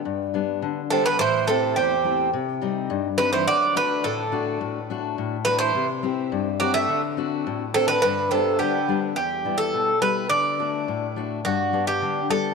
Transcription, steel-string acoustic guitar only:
X:1
M:2/4
L:1/8
Q:1/4=105
K:G
V:1 name="Steel-string acoustic guitar"
G,, [G,B,D] D, [G,B,D] | A,, [A,CE] E,, [A,CE] | C, [G,C_E] G,, [G,CE] | D, [A,DF] A,, [A,DF] |
A,, [A,DF] A,, [A,DF] | C, [CEG] G,, [CEG] | D, [CDF] A,, [CDF] | G,, [G,B,D] D, [G,B,D] |
E,, [G,B,E] B,, [G,B,E] | D, [A,DF] A,, [A,DF] | G,, [G,B,D] D, [G,B,D] |]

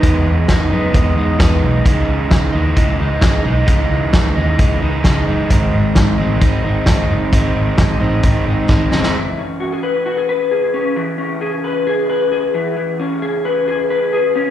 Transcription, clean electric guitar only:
X:1
M:4/4
L:1/16
Q:1/4=132
K:E
V:1 name="Clean electric guitar"
[E,G,B,D]2 G,2 C D B,2 G,2 D2 B,2 D2 | C,2 E,2 D2 G,2 E,2 D2 G,2 D2 | C,2 E,2 D2 G,2 E,2 D2 G,2 D2 | G,,2 G,2 D2 ^B,2 D,2 D2 B,2 D2 |
G,,2 G,2 C D ^B,2 D,2 D2 B,2 C D | E,2 C2 F G B2 F G B2 G2 C2 | E,2 C2 G2 B2 G2 B2 G2 E,2 | E,2 C2 G2 B2 G2 B2 G2 C2 |]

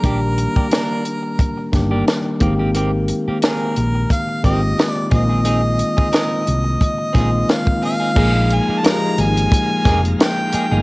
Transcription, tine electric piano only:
X:1
M:4/4
L:1/16
Q:"Swing 16ths" 1/4=89
K:Bbmix
V:1 name="Tine electric piano"
[E,G,B,DG]6 z4 [E,G,B,DG]4 [E,A,B,CG]2- | [E,A,B,CG]4 z6 [E,A,B,CFG]4 [E,A,B,CF]2- | [E,A,B,CF]4 z6 [E,A,B,CF]4- [E,A,B,CF] z | [F,A,B,EA]4 [F,A,B,EGA]6 z6 |]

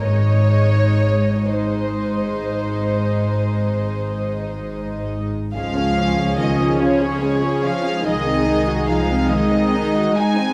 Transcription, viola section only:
X:1
M:12/8
L:1/16
Q:3/8=46
K:Db
V:1 name="Viola section"
[A,E]6 [A,E]16- [A,E] z | [F,D]12 [A,E]12 |]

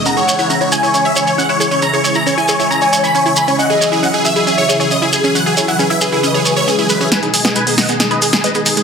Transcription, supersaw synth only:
X:1
M:4/4
L:1/16
Q:1/4=136
K:C#dor
V:1 name="Supersaw synth"
a c c c a c g c c e c c f c c c | a c c a c g c c a c c b c c b c | f G G G f G e G G c G G d G G G | f G G f G e G G d G G c G G B G |
[Bg] G G G [Bg] G [df] G G [Bd] G G [Bd] G G G |]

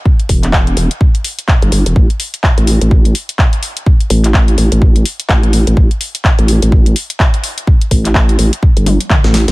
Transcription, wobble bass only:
X:1
M:4/4
L:1/16
Q:"Swing 16ths" 1/4=126
K:Em
V:1 name="Wobble bass" clef=bass
z2 E,,,4 E,,, z6 G,,, G,,, E,,, | A,,, z4 A,,,2 A,,,3 z6 | z2 A,,,4 A,,, A,,,3 z2 A,,,3 A,,, | A,,, z4 A,,,2 A,,,3 z6 |
z2 A,,,4 A,,, z2 G,,,2 z2 A,,,2 A,,, |]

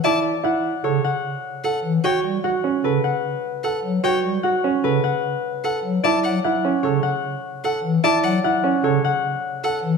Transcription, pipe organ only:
X:1
M:5/4
L:1/8
Q:1/4=150
K:D
V:1 name="Pipe organ" clef=bass
z4 C, z4 E, | z G, z2 C, z4 F, | z G, z2 C, z4 F, | z F, z2 C, z4 E, |
z F, z2 C, z4 E, |]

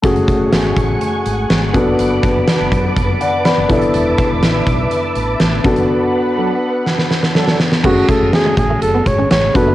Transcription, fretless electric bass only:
X:1
M:4/4
L:1/16
Q:1/4=123
K:F#m
V:1 name="Fretless electric bass" clef=bass
F,,,2 z F,,, G,,,2 A,,,2 z2 G,,,2 G,,,2 F,,,2 | F,,,2 F,,,2 z F,,, F,,2 F,,,2 z3 F,,, E,,, F,,, | E,,,2 z E,,, A,,,2 B,,,2 z2 A,,,2 A,,,2 F,,,2 | z16 |
F,,,2 z F,,, z2 A,,,2 F,,,2 G,,,2 G,,,2 F,,,2 |]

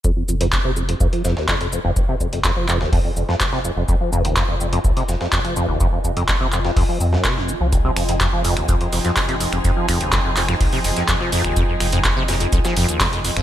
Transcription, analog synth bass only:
X:1
M:4/4
L:1/16
Q:1/4=125
K:Fm
V:1 name="Analog synth bass" clef=bass
z2 F,,,2 z F,,,2 z C,, z F,,, z F,,,2 z F,,, | z2 F,,,2 z F,,,2 z C,, z F,,, z F,,,2 z F,,, | z2 F,,,2 z F,,,2 z C,, z F,,, z F,,,2 z F,,, | z2 F,,,2 z F,,,2 z C,, z F,, z F,,,2 z C,,- |
C,, z F,,,2 z F,,,2 z C,, z F,,, z F,,,2 z F,,, | z2 F,,,2 z F,,,2 z C,, z F,,, z F,,,2 z F,,, | z2 F,,,2 z F,,,2 z C,, z F,,, z F,,,2 z F,,, |]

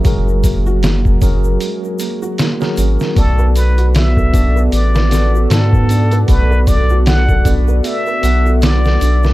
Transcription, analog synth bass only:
X:1
M:4/4
L:1/8
Q:"Swing 16ths" 1/4=77
K:Bdor
V:1 name="Analog synth bass" clef=bass
F,,,4 z3 G,,, | B,,,4 A,,,2 G,,2 | B,,,4 z B,,,2 B,,, |]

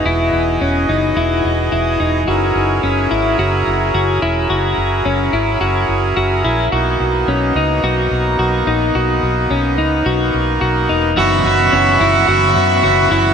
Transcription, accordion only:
X:1
M:4/4
L:1/8
Q:1/4=108
K:F#mix
V:1 name="Accordion"
[E,B,FGd]8 | [F,CEA]8- | [F,CEA]8 | [A,B,D]8- |
[A,B,D]8 | [Febc']8 |]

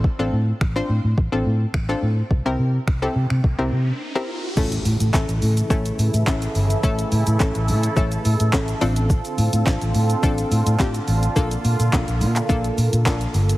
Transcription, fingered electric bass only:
X:1
M:4/4
L:1/16
Q:1/4=106
K:Aphr
V:1 name="Fingered electric bass" clef=bass
z A,,, A,,2 A,,,2 A,, A,, A,,, A,,, A,,2 A,,,2 A,,2 | C,, C,, C,2 C,,2 C, C, C,, C,, C,2 z4 | A,,,2 A,, A,, A,,, A,,, A,,2 A,,,2 A,, A,, A,,,2 G,,,2 | A,,,2 A,, A,, A,,, A,,, A,,2 A,,,2 A,, A,, A,,,2 A,,,2- |
A,,,2 A,, A,, A,,, A,,, A,,2 A,,,2 A,, A,, z2 A,,,2 | B,,,2 B,, B,, B,,, B,,, B,,2 B,,,2 B,, B,, B,,,2 G,,,2 |]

